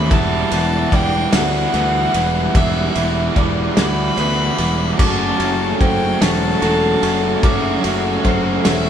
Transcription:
0.00 0.13 D#2 medium
0.00 0.10 E3 loud
0.00 0.12 E4 medium
0.00 4.95 G4 medium
0.00 0.11 A4 medium
0.00 0.14 B5 loud
0.10 0.43 E1 loud
0.10 0.51 E3 loud
0.10 0.51 G3 loud
0.10 0.52 B3 loud
0.10 0.52 E4 loud
0.10 0.92 E5 medium
0.10 4.96 E5 medium
0.10 0.96 A5 loud
0.10 4.96 B5 medium
0.10 kick loud
0.10 ride loud
0.51 0.84 E1 loud
0.51 0.91 E3 medium
0.51 0.92 G3 medium
0.51 0.93 B3 medium
0.51 0.93 E4 loud
0.51 ride medium
0.92 1.24 E1 loud
0.92 1.32 E3 medium
0.92 1.32 G3 loud
0.92 1.32 B3 loud
0.92 1.34 E4 loud
0.92 1.74 D5 medium
0.92 1.37 G5 loud
0.92 kick medium
0.92 ride medium
1.32 1.65 D2 medium
1.32 1.73 E3 medium
1.32 1.73 G3 medium
1.32 1.73 B3 medium
1.32 1.74 E4 loud
1.32 2.58 F#5 loud
1.32 snare loud
1.32 ride loud
1.73 2.06 D2 loud
1.73 2.13 E3 medium
1.73 2.13 G3 medium
1.73 2.14 B3 loud
1.73 2.15 E4 medium
1.73 2.56 B4 medium
1.73 ride medium
2.14 2.47 E1 loud
2.14 2.54 E3 medium
2.14 2.54 G3 medium
2.14 2.55 B3 medium
2.14 2.56 E4 loud
2.14 ride medium
2.54 2.87 E1 loud
2.54 2.95 E3 loud
2.54 2.95 G3 loud
2.54 2.95 B3 loud
2.54 2.97 E4 loud
2.54 3.37 E5 medium
2.54 3.38 E5 medium
2.54 kick loud
2.54 ride loud
2.95 3.28 E1 loud
2.95 3.36 E3 medium
2.95 3.36 G3 loud
2.95 3.36 B3 medium
2.95 3.37 E4 medium
2.95 ride medium
3.36 3.68 E1 medium
3.36 3.76 E3 medium
3.36 3.76 G3 loud
3.36 3.77 B3 medium
3.36 3.78 E4 loud
3.36 4.18 D5 medium
3.36 kick medium
3.36 ride medium
3.77 4.09 D2 medium
3.77 4.17 E3 medium
3.77 4.17 G3 medium
3.77 4.17 B3 medium
3.77 4.19 E4 medium
3.77 4.96 B5 loud
3.77 snare loud
3.77 ride loud
4.17 4.50 D2 medium
4.17 4.58 E3 medium
4.17 4.58 G3 medium
4.17 4.58 B3 medium
4.17 4.59 E4 medium
4.17 4.99 B4 medium
4.17 ride medium
4.58 4.91 E1 medium
4.58 4.98 E3 medium
4.58 4.97 G3 medium
4.58 4.97 B3 medium
4.58 4.99 E4 medium
4.58 ride medium
4.98 5.31 F#1 loud
4.98 5.39 F#3 loud
4.98 5.40 A3 loud
4.98 5.39 C#4 loud
4.98 5.41 F#4 loud
4.98 8.90 A4 medium
4.98 8.90 E5 medium
4.98 5.77 A5 loud
4.98 7.41 C6 medium
4.98 5.81 D6 medium
4.98 kick loud
4.98 crash loud
5.39 5.72 F#1 medium
5.39 5.79 F#3 medium
5.39 5.80 A3 medium
5.39 5.80 C#4 medium
5.39 5.81 F#4 medium
5.39 ride medium
5.80 6.13 F#1 medium
5.80 6.20 F#3 medium
5.80 6.20 A3 medium
5.80 6.20 C#4 loud
5.80 6.21 F#4 medium
5.80 6.62 C5 medium
5.80 6.23 G5 loud
5.80 kick medium
5.80 ride medium
6.20 6.54 E1 medium
6.20 6.61 F#3 medium
6.20 6.61 A3 medium
6.20 6.61 C#4 medium
6.20 6.62 F#4 medium
6.20 7.45 A5 loud
6.20 snare loud
6.20 ride loud
6.61 6.94 E1 medium
6.61 7.02 F#3 medium
6.61 7.01 A3 medium
6.61 7.02 C#4 medium
6.61 7.03 F#4 medium
6.61 7.44 A4 medium
6.61 ride medium
7.02 7.35 F#1 loud
7.02 7.42 F#3 medium
7.02 7.42 A3 medium
7.02 7.43 C#4 medium
7.02 7.44 F#4 medium
7.02 ride medium
7.43 7.76 F#1 loud
7.43 7.83 F#3 loud
7.43 7.83 A3 loud
7.43 7.84 C#4 loud
7.43 7.85 F#4 loud
7.43 8.25 E5 medium
7.43 8.90 B5 medium
7.43 8.25 D6 medium
7.43 kick loud
7.43 ride loud
7.84 8.17 F#1 loud
7.84 8.24 F#3 medium
7.84 8.24 A3 medium
7.84 8.25 C#4 loud
7.84 8.26 F#4 medium
7.84 ride medium
8.25 8.57 F#1 medium
8.25 8.65 F#3 medium
8.25 8.64 A3 loud
8.25 8.65 C#4 loud
8.25 8.66 F#4 loud
8.25 8.90 C5 medium
8.25 kick medium
8.25 ride medium
8.65 8.90 E1 medium
8.65 8.90 F#3 medium
8.65 8.90 A3 medium
8.65 8.90 C#4 medium
8.65 8.90 F#4 medium
8.65 8.90 E5 loud
8.65 snare loud
8.65 ride loud

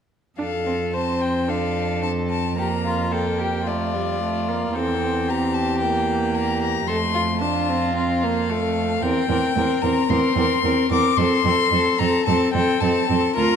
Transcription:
0.38 4.71 F2 soft
0.38 0.46 D4 soft
0.38 0.96 A4 soft
0.38 0.90 F5 medium
0.66 0.74 C4 soft
0.93 1.50 C4 soft
0.93 1.49 C5 soft
0.93 1.23 A5 medium
1.21 1.50 G5 medium
1.48 2.04 D4 soft
1.48 2.58 A4 soft
1.48 2.02 F5 medium
2.03 2.57 C4 soft
2.03 2.11 A5 medium
2.30 2.57 A5 medium
2.58 3.11 A#3 soft
2.58 2.67 G4 soft
2.58 3.12 A#5 medium
2.85 3.14 F4 soft
3.12 3.68 A#3 soft
3.12 3.40 A4 soft
3.12 3.69 G5 medium
3.38 3.66 G4 soft
3.66 3.95 A3 soft
3.66 4.77 F4 soft
3.66 4.75 D5 medium
3.94 4.21 G3 soft
4.21 4.50 A3 soft
4.48 4.77 A#3 soft
4.75 6.84 E2 soft
4.75 5.01 C4 soft
4.75 5.30 A4 soft
4.75 5.32 G5 medium
5.01 5.84 C4 soft
5.28 6.34 G4 soft
5.28 5.56 A#5 medium
5.54 5.80 A5 medium
5.81 6.88 A#3 soft
5.81 6.36 G5 medium
6.35 6.87 G4 soft
6.35 6.62 A#5 medium
6.62 6.89 A#5 medium
6.88 8.98 F2 soft
6.88 7.43 A3 soft
6.88 6.96 A4 medium
6.88 7.41 C6 medium
7.14 7.22 F4 medium
7.41 7.71 D4 soft
7.41 8.51 F4 medium
7.41 7.95 A5 medium
7.69 7.95 C4 medium
7.95 8.25 C4 medium
7.95 9.04 F5 medium
8.23 8.51 A#3 medium
8.49 9.02 A3 medium
8.49 9.03 A4 soft
9.02 9.10 E2 soft
9.02 9.29 C4 medium
9.02 9.29 A#4 medium
9.02 9.83 G5 medium
9.29 9.37 E2 medium
9.29 9.56 C4 soft
9.29 9.56 A#4 soft
9.56 9.64 E2 medium
9.56 9.82 C4 medium
9.56 9.83 A#4 soft
9.82 9.91 E2 medium
9.82 10.08 C4 medium
9.82 10.10 A#4 soft
9.82 10.12 A#5 medium
10.09 10.18 E2 medium
10.09 10.35 C4 medium
10.09 10.37 A#4 medium
10.09 10.91 C6 medium
10.36 10.45 E2 medium
10.36 10.63 C4 medium
10.36 10.64 A#4 soft
10.63 10.72 E2 soft
10.63 10.90 C4 medium
10.63 10.90 A#4 soft
10.90 10.99 E2 medium
10.90 11.17 C4 soft
10.90 11.18 A#4 medium
10.90 11.18 D6 medium
11.17 11.26 F2 medium
11.17 11.44 C4 medium
11.17 11.46 A4 medium
11.17 12.00 C6 medium
11.45 11.53 F2 medium
11.45 11.72 C4 soft
11.45 11.73 A4 medium
11.72 11.80 F2 medium
11.72 11.99 C4 soft
11.72 12.00 A4 medium
11.99 12.08 F2 soft
11.99 12.26 C4 medium
11.99 12.27 A4 soft
11.99 12.25 A#5 medium
12.26 12.36 F2 medium
12.26 12.53 C4 medium
12.26 12.54 A4 medium
12.26 12.53 A5 medium
12.53 12.62 F2 medium
12.53 12.81 C4 medium
12.53 12.81 A4 medium
12.53 12.82 G5 medium
12.81 12.90 F2 medium
12.81 13.08 C4 medium
12.81 13.09 A4 soft
12.81 13.35 A5 medium
13.09 13.18 F2 medium
13.09 13.36 C4 soft
13.09 13.35 A4 soft
13.36 13.45 D2 medium
13.36 13.56 F4 medium
13.36 13.56 A#4 medium
13.36 13.56 A#5 medium

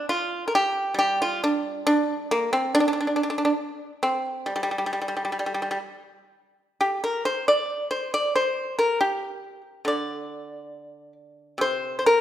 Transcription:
0.00 1.84 C3 soft
0.09 0.44 F4 medium
0.48 0.53 A#4 medium
0.55 0.95 G4 medium
0.94 3.58 G3 medium
0.99 1.18 G4 medium
1.22 1.41 F4 medium
1.44 1.83 D4 medium
1.87 2.26 D4 medium
2.31 2.50 A#3 medium
2.53 2.72 C4 medium
2.75 2.79 D4 medium
2.80 2.86 D4 medium
2.88 2.92 D4 medium
2.93 2.99 D4 medium
3.01 3.06 D4 medium
3.07 3.14 D4 soft
3.16 3.22 D4 medium
3.23 3.29 D4 medium
3.30 3.36 D4 medium
3.38 3.44 D4 medium
3.45 3.51 D4 medium
4.03 4.44 C4 medium
4.46 4.54 G3 medium
4.56 4.62 G3 medium
4.63 4.70 G3 medium
4.71 4.77 G3 soft
4.78 4.85 G3 soft
4.86 4.92 G3 soft
4.93 5.00 G3 soft
5.02 5.07 G3 soft
5.08 5.15 G3 soft
5.17 5.23 G3 soft
5.25 5.31 G3 soft
5.32 5.38 G3 soft
5.39 5.45 G3 soft
5.46 5.53 G3 soft
5.54 5.61 G3 medium
5.62 5.69 G3 soft
5.71 5.77 G3 medium
6.81 7.00 G4 medium
7.04 7.23 A#4 medium
7.25 7.45 C5 medium
7.48 7.88 D5 medium
7.91 8.10 C5 medium
8.14 8.33 D5 medium
8.36 8.75 C5 medium
8.79 8.98 A#4 medium
9.01 9.61 G4 medium
9.85 12.21 D3 medium
9.85 11.12 D5 medium
11.58 12.21 C3 soft
11.58 11.96 C5 medium
11.99 12.05 C5 soft
12.06 12.21 A#4 medium

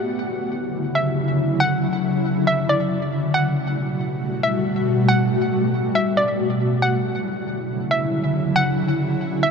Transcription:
0.00 3.31 C#3 medium
0.00 3.31 D3 medium
0.00 3.31 F#3 medium
0.00 3.31 E4 medium
0.00 0.91 F#5 medium
0.95 1.57 E5 medium
1.60 2.43 F#5 loud
2.47 2.68 E5 medium
2.69 3.31 D5 medium
3.34 6.79 B2 medium
3.34 6.79 G3 medium
3.34 6.79 A3 medium
3.34 6.79 F#4 medium
3.34 4.39 F#5 medium
4.43 5.05 E5 medium
5.09 5.91 F#5 loud
5.95 6.16 E5 medium
6.17 6.78 D5 medium
6.82 9.51 C#3 medium
6.82 9.51 D3 medium
6.82 9.51 F#3 medium
6.82 9.51 E4 medium
6.82 7.87 F#5 medium
7.91 8.52 E5 medium
8.56 9.39 F#5 loud
9.43 9.51 E5 medium

